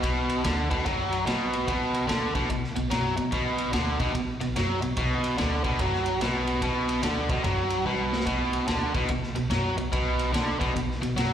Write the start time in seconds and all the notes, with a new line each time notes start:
0.03 B1 B2, kick, ride
0.30 ride
0.44 D2 D3, snare, ride
0.70 B1 B2, kick, ride
0.86 F#2 F#3, kick, ride
1.12 ride
1.26 B1 B2, snare, ride
1.53 ride
1.67 B1 B2, kick, ride
1.94 ride
2.07 D2 D3, snare, ride
2.35 B1 B2, kick, ride
2.50 B1 B2, kick, ride
2.64 snare
2.76 B1 B2, ride
2.90 F#2 F#3, snare, ride
3.17 B1 B2, ride
3.32 B1 B2, kick, ride
3.58 ride
3.72 D2 D3, snare, ride
3.99 B1 B2, kick, ride
4.14 B1 B2, kick, ride
4.41 B1 B2, ride
4.56 F#2 F#3, snare, ride
4.82 B1 B2, ride
4.97 B1 B2, kick, ride
5.24 ride
5.38 D2 D3, snare, ride
5.64 B1 B2, kick, ride
5.79 F#2 F#3, kick, ride
5.94 snare
6.06 ride
6.21 B1 B2, snare, ride
6.47 ride
6.62 B1 B2, kick, ride
6.89 ride
7.03 D2 D3, snare, ride
7.29 B1 B2, kick, ride
7.44 F#2 F#3, kick, ride
7.70 ride
7.86 B1 B2, high tom
8.13 snare
8.20 snare
8.27 B1 B2, kick, ride
8.53 ride
8.68 D2 D3, snare, ride
8.94 B1 B2, kick, ride
9.09 B1 B2, kick, ride
9.23 snare
9.35 B1 B2, ride
9.50 F#2 F#3, snare, ride
9.77 B1 B2, ride
9.92 B1 B2, kick, ride
10.19 ride
10.33 D2 D3, snare, ride
10.60 B1 B2, kick, ride
10.75 B1 B2, kick, ride
10.91 snare
11.02 B1 B2, ride
11.17 F#2 F#3, snare, ride